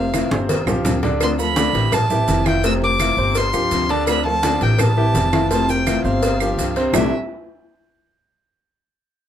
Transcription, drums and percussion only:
0.14 cowbell, high conga, claves, maracas
0.31 high conga, maracas
0.49 cowbell, high conga, maracas
0.67 low conga, claves, maracas
0.85 cowbell, low conga, maracas
1.03 cowbell, low conga, maracas
1.21 cowbell, high conga, claves, maracas
1.39 high conga, maracas
1.56 cowbell, high conga, maracas
1.74 cowbell, high conga, maracas
1.92 cowbell, high conga, low conga, claves, maracas
2.10 high conga, low conga, maracas
2.28 cowbell, high conga, maracas
2.46 cowbell, high conga, claves, maracas
2.64 cowbell, high conga, maracas
2.82 high conga
2.99 cowbell, high conga, claves, maracas
3.17 high conga, maracas
3.35 cowbell, high conga, maracas
3.53 high conga, claves, maracas
3.71 cowbell, high conga, maracas
3.89 cowbell, high conga, maracas
4.07 cowbell, high conga, claves, maracas
4.25 high conga
4.43 cowbell, high conga, maracas
4.61 cowbell, high conga, maracas
4.79 cowbell, high conga, low conga, claves, maracas
4.97 high conga
5.15 cowbell, high conga, maracas
5.33 cowbell, high conga, claves, maracas
5.51 cowbell, high conga, maracas
5.69 high conga, maracas
5.87 cowbell, high conga, claves, maracas
6.05 high conga, maracas
6.23 cowbell, high conga, maracas
6.40 high conga, claves, maracas
6.58 cowbell, high conga, maracas
6.76 cowbell, high conga, maracas
6.93 low bongo, low conga, claves, maracas

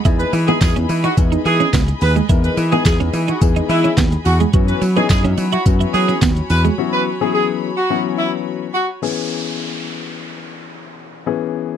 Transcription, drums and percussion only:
0.05 kick, closed hi-hat, tambourine, shaker
0.20 closed hi-hat, shaker
0.33 open hi-hat, tambourine, shaker
0.48 closed hi-hat, shaker
0.61 kick, snare, clap, closed hi-hat, tambourine, shaker
0.76 closed hi-hat, shaker
0.89 open hi-hat, tambourine, shaker
1.04 closed hi-hat, shaker
1.17 kick, closed hi-hat, tambourine, shaker
1.32 closed hi-hat, shaker
1.46 open hi-hat, shaker
1.60 closed hi-hat, shaker
1.73 kick, snare, clap, closed hi-hat, tambourine, shaker
1.88 closed hi-hat, shaker
2.01 open hi-hat, tambourine, shaker
2.16 closed hi-hat, shaker
2.29 kick, closed hi-hat, tambourine, shaker
2.44 closed hi-hat, shaker
2.57 open hi-hat, tambourine, shaker
2.72 closed hi-hat, shaker
2.85 kick, snare, clap, closed hi-hat, tambourine, shaker
3.00 closed hi-hat, shaker
3.13 open hi-hat, tambourine, shaker
3.28 closed hi-hat, shaker
3.41 kick, closed hi-hat, tambourine, shaker
3.56 closed hi-hat, shaker
3.70 open hi-hat, tambourine, shaker
3.84 closed hi-hat, shaker
3.97 kick, snare, clap, closed hi-hat, tambourine, shaker
4.12 closed hi-hat, shaker
4.25 open hi-hat, tambourine, shaker
4.40 closed hi-hat, shaker
4.53 kick, closed hi-hat, shaker
4.68 closed hi-hat, shaker
4.82 open hi-hat, tambourine, shaker
4.96 closed hi-hat, shaker
5.10 kick, snare, clap, closed hi-hat, tambourine, shaker
5.25 closed hi-hat, shaker
5.37 open hi-hat, tambourine, shaker
5.52 closed hi-hat, shaker
5.66 kick, closed hi-hat, tambourine, shaker
5.81 closed hi-hat, shaker
5.94 open hi-hat, tambourine, shaker
6.09 closed hi-hat, shaker
6.22 kick, snare, clap, closed hi-hat, tambourine, shaker
6.37 closed hi-hat, shaker
6.50 open hi-hat, tambourine, shaker
6.65 closed hi-hat, shaker

